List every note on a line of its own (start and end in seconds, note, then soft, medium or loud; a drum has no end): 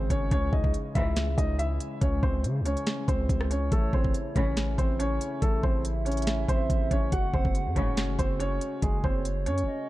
0.00 3.68 C#3 medium
0.00 0.28 D#3 medium
0.00 0.28 G#3 medium
0.10 0.31 G#1 loud
0.10 0.29 C#4 medium
0.10 0.29 C#5 medium
0.10 kick medium
0.10 closed hi-hat medium
0.31 0.52 C#2 loud
0.31 7.08 E3 medium
0.31 3.69 G#3 medium
0.31 0.51 C#4 medium
0.31 0.50 C#5 medium
0.31 kick loud
0.31 closed hi-hat medium
0.53 0.73 C#2 loud
0.53 0.72 D#4 medium
0.53 0.71 D#5 medium
0.53 kick loud
0.64 kick loud
0.74 closed hi-hat medium
0.95 1.13 C#2 loud
0.95 1.36 C#2 loud
0.95 1.13 G#2 loud
0.95 1.13 E3 loud
0.95 1.36 E4 medium
0.95 1.35 E5 medium
0.95 kick loud
0.95 closed hi-hat medium
1.16 snare loud
1.16 closed hi-hat medium
1.38 1.79 C#2 loud
1.38 1.57 D#4 medium
1.38 1.56 D#5 medium
1.38 kick loud
1.38 closed hi-hat medium
1.59 1.99 E4 medium
1.59 1.99 E5 medium
1.59 closed hi-hat medium
1.80 closed hi-hat medium
2.01 2.22 C#2 loud
2.01 2.20 C#4 medium
2.01 2.20 C#5 medium
2.01 kick loud
2.01 closed hi-hat medium
2.23 2.46 C#2 loud
2.23 2.42 C4 medium
2.23 2.41 C5 medium
2.23 kick loud
2.44 2.62 C#3 loud
2.44 closed hi-hat medium
2.61 2.76 C#2 loud
2.65 3.06 C#4 medium
2.65 3.05 C#5 medium
2.65 closed hi-hat medium
2.77 closed hi-hat soft
2.87 snare loud
2.87 closed hi-hat medium
3.08 3.29 C#2 loud
3.08 3.49 C4 medium
3.08 3.48 C5 medium
3.08 kick loud
3.08 closed hi-hat medium
3.29 3.70 C#2 loud
3.29 kick loud
3.29 closed hi-hat medium
3.41 cross-stick loud
3.51 3.70 C#4 medium
3.51 3.69 C#5 medium
3.51 closed hi-hat medium
3.72 3.92 A1 loud
3.72 9.89 C#3 medium
3.72 9.89 A3 medium
3.72 3.91 A3 medium
3.72 7.09 E4 medium
3.72 3.90 A4 medium
3.72 4.53 C#5 loud
3.72 kick loud
3.72 closed hi-hat medium
3.93 4.14 A1 loud
3.93 4.12 C4 medium
3.93 4.12 C5 medium
3.93 kick medium
4.04 kick loud
4.14 closed hi-hat medium
4.36 4.77 A1 loud
4.36 4.54 C#2 loud
4.36 4.54 A2 medium
4.36 4.54 E3 loud
4.36 4.76 C#4 medium
4.36 4.76 C#5 medium
4.36 kick loud
4.36 closed hi-hat medium
4.57 snare loud
4.57 closed hi-hat medium
4.78 5.19 A1 loud
4.78 4.97 C4 medium
4.78 4.97 C5 medium
4.78 kick loud
4.78 closed hi-hat medium
4.99 5.40 C#4 medium
4.99 5.39 C#5 medium
4.99 closed hi-hat medium
5.21 closed hi-hat medium
5.42 5.63 A1 loud
5.42 5.61 A3 medium
5.42 5.60 A4 medium
5.42 kick loud
5.42 closed hi-hat medium
5.63 6.45 A1 loud
5.63 5.82 C4 medium
5.63 5.82 C5 medium
5.63 7.08 E5 medium
5.63 kick loud
5.85 closed hi-hat medium
6.05 6.46 C#4 medium
6.05 6.46 C#5 medium
6.05 closed hi-hat medium
6.12 closed hi-hat medium
6.17 closed hi-hat medium
6.22 closed hi-hat medium
6.27 snare loud
6.27 closed hi-hat medium
6.49 6.69 A1 loud
6.49 6.89 C4 medium
6.49 6.89 C5 medium
6.49 kick loud
6.49 closed hi-hat medium
6.70 6.90 A1 loud
6.70 kick loud
6.70 closed hi-hat medium
6.91 7.11 A1 loud
6.91 7.10 C#4 medium
6.91 7.10 C#5 medium
6.91 kick medium
6.91 closed hi-hat medium
7.12 7.33 F#1 loud
7.12 9.89 G#3 medium
7.12 9.89 F#4 medium
7.12 7.31 F#4 medium
7.12 7.93 F#5 loud
7.12 7.31 F#5 medium
7.12 kick loud
7.12 closed hi-hat medium
7.34 7.44 F#1 loud
7.34 7.53 C4 medium
7.34 7.52 C5 medium
7.34 kick loud
7.45 7.68 F#1 loud
7.45 kick loud
7.55 closed hi-hat medium
7.66 7.76 F#2 loud
7.76 8.17 F#1 loud
7.76 7.94 A1 loud
7.76 7.94 G#2 loud
7.76 7.94 C#3 loud
7.76 8.16 C#4 medium
7.76 8.16 C#5 medium
7.76 kick medium
7.76 closed hi-hat medium
7.97 snare loud
7.97 closed hi-hat medium
8.19 8.60 F#1 loud
8.19 8.38 C4 medium
8.19 8.37 C5 medium
8.19 kick loud
8.19 closed hi-hat medium
8.40 8.80 C#4 medium
8.40 8.80 C#5 loud
8.40 closed hi-hat medium
8.61 closed hi-hat medium
8.82 9.03 F#1 loud
8.82 9.01 G#3 medium
8.82 9.01 G#4 medium
8.82 kick loud
8.82 closed hi-hat medium
9.04 9.48 F#1 loud
9.04 9.23 C4 medium
9.04 9.22 C5 medium
9.04 9.64 C#5 medium
9.04 kick medium
9.25 closed hi-hat medium
9.46 9.64 F#2 loud
9.46 9.87 C#4 medium
9.46 9.86 C#5 medium
9.46 closed hi-hat medium
9.58 closed hi-hat soft
9.63 9.67 F#1 loud
9.67 9.89 D#5 medium